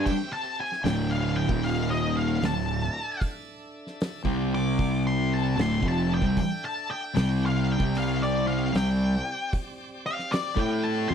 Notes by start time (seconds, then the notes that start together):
Already playing: C4 G4 E5
0.06 G5, kick, crash
0.33 A5
0.60 G#5
0.72 snare
0.84 D1 D2 A2 D3 D4 A4 G5, snare, open hi-hat
1.11 F5
1.36 G5
1.47 D#1 D#2 A#2 D#3 D#4 A#4 F5, kick
1.64 F5, open hi-hat
1.91 D#5, snare
2.17 F5
2.41 D1 D2 A2 D4 A4 E5, snare, open hi-hat
2.45 A5
3.22 kick, open hi-hat
3.87 snare
4.01 snare, open hi-hat
4.23 C2 C3 G3 C4 G4 D5, kick
4.55 D6
4.79 kick, open hi-hat
5.05 C6, snare
5.34 A5
5.57 D1 D2 A2 D4 A4 E5 C6, snare, open hi-hat
5.81 F1 F2 C3 F3, kick
5.88 A5
6.14 G5
6.21 C2 C3 G3, kick
6.37 G5, kick, open hi-hat
6.65 A5
6.91 G5
7.14 C2 C3 G3 C4 G4 D5 G5, snare, open hi-hat
7.46 F5
7.72 G5
7.78 C2 C3 G3 C4, kick
7.95 F5, open hi-hat
8.21 D5, snare
8.47 F5
8.73 C2 C3 G3 G5, snare, open hi-hat
9.53 kick, open hi-hat
10.06 F5
10.19 snare
10.32 D5, snare, open hi-hat
10.56 A2 A3 E4 A4 G5, kick
10.83 A5
11.09 F2 F3 C4 F4 C6